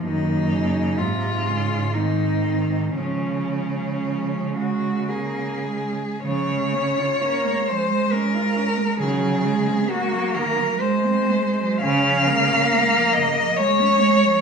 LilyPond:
<<
  \new Staff \with { instrumentName = "Cello" } { \time 3/4 \key des \major \tempo 4 = 64 ees'4 f'4 ees'4 | des'4. ges'8 aes'4 | des''4. c''8 bes'4 | aes'4 ges'8 bes'8 c''4 |
f''4. ees''8 des''4 | }
  \new Staff \with { instrumentName = "Cello" } { \clef bass \time 3/4 \key des \major bes4 aes4 c'4 | aes2. | f16 aes16 des'16 f'16 des'16 aes16 f16 aes16 des'16 f'16 des'16 aes16 | ees16 ges16 aes16 c'16 aes16 ges16 ees16 ges16 aes16 c'16 aes16 ges16 |
des16 f16 aes16 des'16 aes16 f16 des16 f16 aes16 des'16 aes16 f16 | }
  \new Staff \with { instrumentName = "Cello" } { \clef bass \time 3/4 \key des \major ees8 des8 c8 des8 ees8 ees8 | f4 f8 aes8 bes8 aes8 | r4 bes8 aes4. | ges8 aes8 bes4 aes4 |
des'8 bes4. aes4 | }
  \new Staff \with { instrumentName = "Cello" } { \clef bass \time 3/4 \key des \major ges,4 aes,2 | des2. | des4 r2 | des4 r2 |
des4 r2 | }
>>